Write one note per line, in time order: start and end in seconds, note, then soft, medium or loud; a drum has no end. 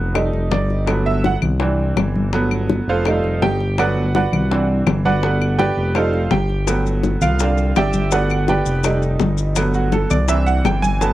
0.00 0.31 F1 medium
0.00 0.12 F#3 medium
0.00 0.12 A3 soft
0.00 0.12 B3 medium
0.14 0.84 G3 medium
0.14 0.84 A3 medium
0.14 0.84 D#4 medium
0.14 high bongo medium
0.14 high conga soft
0.14 claves medium
0.33 0.51 F1 medium
0.33 high bongo soft
0.33 high conga soft
0.51 1.36 G1 medium
0.51 1.02 D5 medium
0.51 high bongo medium
0.51 low bongo medium
0.51 high conga medium
0.70 high bongo soft
0.70 high conga soft
0.86 1.39 F#3 medium
0.86 1.39 A3 medium
0.86 1.40 B3 medium
0.86 high bongo medium
0.86 high conga soft
0.86 claves medium
1.06 1.24 E5 medium
1.06 high conga soft
1.24 1.36 F#5 medium
1.24 high bongo medium
1.24 high conga medium
1.42 1.93 C2 medium
1.42 high conga soft
1.42 low conga medium
1.42 claves medium
1.60 2.29 E3 medium
1.60 2.30 C4 soft
1.60 2.30 D4 medium
1.60 high bongo medium
1.60 high conga soft
1.80 high conga soft
1.96 2.81 G1 medium
1.96 high bongo medium
1.96 low bongo medium
1.96 high conga medium
1.96 claves medium
2.15 high conga medium
2.33 3.02 F#3 medium
2.33 3.02 A3 medium
2.33 3.03 B3 medium
2.33 high bongo medium
2.33 high conga soft
2.51 high bongo soft
2.51 high conga soft
2.51 claves medium
2.70 high bongo medium
2.70 high conga medium
2.88 3.21 F1 loud
2.88 3.39 F4 medium
2.88 3.39 A4 medium
2.88 3.39 C5 medium
2.88 3.39 F5 medium
2.88 high conga soft
3.05 3.58 G3 medium
3.05 3.58 A3 medium
3.05 3.58 D#4 medium
3.05 high bongo medium
3.05 high conga soft
3.05 claves medium
3.24 3.41 F1 medium
3.24 high bongo soft
3.24 high conga soft
3.42 4.27 G1 medium
3.42 3.76 G4 medium
3.42 3.76 G5 medium
3.42 high bongo medium
3.42 low bongo medium
3.42 high conga medium
3.60 high bongo soft
3.60 high conga soft
3.78 4.02 F#3 medium
3.78 4.03 A3 medium
3.78 4.03 B3 medium
3.78 4.12 F#4 medium
3.78 4.12 B4 medium
3.78 4.12 D5 medium
3.78 4.12 F#5 medium
3.78 high bongo medium
3.78 high conga soft
3.78 claves medium
3.96 high conga soft
4.15 4.66 F#4 medium
4.15 4.66 B4 medium
4.15 4.66 D5 medium
4.15 4.65 F#5 medium
4.15 high bongo medium
4.15 high conga medium
4.32 4.83 C2 medium
4.32 high conga soft
4.32 low conga medium
4.32 claves medium
4.51 5.02 E3 medium
4.51 5.02 C4 medium
4.51 5.03 D4 medium
4.51 high bongo medium
4.51 high conga soft
4.69 high conga soft
4.86 5.71 G1 medium
4.86 high bongo medium
4.86 low bongo medium
4.86 high conga medium
4.86 claves medium
5.05 5.56 F#4 medium
5.05 5.56 B4 medium
5.05 5.56 D5 medium
5.05 5.56 F#5 medium
5.05 high conga medium
5.22 5.91 G3 medium
5.22 5.92 A3 medium
5.22 5.92 B3 medium
5.22 high bongo medium
5.41 high bongo soft
5.41 high conga soft
5.41 claves medium
5.59 5.93 G4 medium
5.59 5.93 B4 medium
5.59 5.93 D5 medium
5.59 5.92 G5 medium
5.59 high bongo medium
5.59 high conga medium
5.77 6.28 F1 medium
5.77 high conga soft
5.95 6.19 G3 medium
5.95 6.19 A3 medium
5.95 6.20 D#4 medium
5.95 6.29 F4 medium
5.95 6.29 A4 medium
5.95 6.29 C5 medium
5.95 6.29 F5 medium
5.95 high bongo medium
5.95 high conga soft
5.95 claves medium
6.13 high bongo soft
6.13 high conga soft
6.31 7.16 G1 medium
6.31 6.82 G4 medium
6.31 6.82 G5 medium
6.31 high bongo medium
6.31 low bongo medium
6.31 high conga medium
6.49 high bongo soft
6.49 high conga soft
6.67 7.36 F#3 medium
6.67 7.36 A3 medium
6.67 7.36 B3 medium
6.67 high bongo medium
6.67 high conga soft
6.67 claves medium
6.67 maracas medium
6.86 high conga soft
6.86 maracas soft
7.03 high bongo medium
7.03 high conga medium
7.03 maracas soft
7.21 7.72 C2 loud
7.21 7.72 F4 medium
7.21 7.72 F5 medium
7.21 high conga soft
7.21 low conga medium
7.21 claves medium
7.21 maracas medium
7.39 8.09 D3 medium
7.39 8.09 C4 medium
7.39 8.09 D4 medium
7.39 high bongo medium
7.39 high conga soft
7.39 maracas medium
7.58 high conga soft
7.58 maracas soft
7.76 8.61 G1 medium
7.76 8.10 G4 medium
7.76 8.10 D5 medium
7.76 8.10 E5 medium
7.76 8.10 G5 loud
7.76 high bongo medium
7.76 low bongo medium
7.76 high conga medium
7.76 claves medium
7.76 maracas soft
7.93 high conga medium
7.93 maracas medium
8.11 8.80 G3 medium
8.11 8.81 A3 medium
8.11 8.81 B3 medium
8.11 8.46 F#4 medium
8.11 8.46 B4 medium
8.11 8.46 D5 medium
8.11 8.46 F#5 medium
8.11 high bongo medium
8.11 high conga soft
8.11 maracas medium
8.30 high bongo soft
8.30 high conga soft
8.30 claves medium
8.30 maracas soft
8.48 8.99 G4 medium
8.48 8.99 B4 medium
8.48 8.99 D5 medium
8.48 8.99 G5 medium
8.48 high bongo medium
8.48 high conga medium
8.48 maracas soft
8.66 9.17 F1 loud
8.66 high conga soft
8.66 maracas medium
8.84 9.53 G3 medium
8.84 9.53 A3 medium
8.84 9.53 D#4 medium
8.84 high bongo medium
8.84 high conga soft
8.84 claves medium
8.84 maracas medium
9.02 high bongo soft
9.02 high conga soft
9.02 maracas soft
9.20 10.05 G1 medium
9.20 high bongo medium
9.20 low bongo medium
9.20 high conga medium
9.20 maracas soft
9.38 high bongo soft
9.38 maracas medium
9.56 10.08 F#3 medium
9.56 10.08 A3 medium
9.56 10.08 B3 medium
9.56 high bongo medium
9.56 high conga soft
9.56 claves medium
9.56 maracas medium
9.74 9.92 F#4 medium
9.74 high conga soft
9.74 maracas soft
9.92 10.10 A4 medium
9.92 high bongo medium
9.92 high conga medium
9.92 maracas soft
10.10 10.61 C2 loud
10.10 10.28 D5 medium
10.10 high conga soft
10.10 low conga medium
10.10 claves medium
10.10 maracas medium
10.28 10.97 E3 medium
10.28 10.98 C4 soft
10.28 10.98 D4 medium
10.28 10.46 E5 medium
10.28 high bongo medium
10.28 high conga soft
10.28 maracas loud
10.46 10.64 F#5 medium
10.46 high conga soft
10.46 maracas soft
10.64 11.13 G1 medium
10.64 10.83 G5 medium
10.64 high bongo medium
10.64 low bongo medium
10.64 high conga medium
10.64 claves medium
10.64 maracas soft
10.82 11.00 G#5 loud
10.82 high conga medium
10.82 maracas medium
11.01 11.13 F#3 medium
11.01 11.13 A3 medium
11.01 11.13 B3 medium
11.01 11.13 A5 medium
11.01 high bongo medium
11.01 high conga soft
11.01 maracas medium